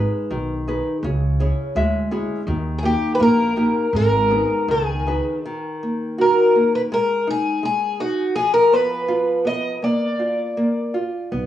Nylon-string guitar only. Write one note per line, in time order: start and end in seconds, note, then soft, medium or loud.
0.00 0.29 G#3 medium
0.00 0.53 D#4 soft
0.00 0.53 G#4 soft
0.00 0.54 B4 soft
0.31 1.01 D#3 medium
0.68 0.97 D#4 soft
0.68 0.97 G#4 soft
0.68 0.97 B4 medium
1.04 1.73 C#3 medium
1.40 1.97 C#4 soft
1.40 1.97 E4 soft
1.40 1.98 G#4 soft
1.40 1.73 C#5 medium
1.76 2.45 G#3 medium
1.76 2.44 E5 medium
2.11 2.40 C#4 medium
2.11 2.40 E4 medium
2.11 2.40 G#4 medium
2.48 3.18 D#3 medium
2.83 3.19 A#3 medium
2.83 3.42 D#4 soft
2.83 3.42 G4 medium
3.20 3.55 A#3 medium
3.56 3.86 A#3 medium
3.56 3.86 D#4 medium
3.56 3.86 G4 medium
3.95 4.68 G#3 medium
4.31 4.93 B3 soft
4.31 4.92 D#4 soft
4.31 4.92 G#4 soft
4.68 5.43 D#3 medium
5.07 5.37 D#4 medium
5.07 5.38 G#4 soft
5.07 5.38 B4 medium
5.46 6.88 D#3 medium
5.83 6.19 A#3 soft
6.18 6.54 F#4 medium
6.56 6.91 A#3 medium
6.92 7.62 G#3 medium
7.27 7.63 D#4 medium
7.63 7.99 G#3 medium
8.00 8.35 D#4 medium
8.36 9.78 F3 medium
8.72 9.07 B3 medium
9.08 9.44 F4 medium
9.45 9.81 B3 medium
9.82 10.56 A#3 medium
10.19 10.56 F4 medium
10.57 10.94 A#3 medium
10.94 11.31 F4 medium
11.32 11.46 B3 medium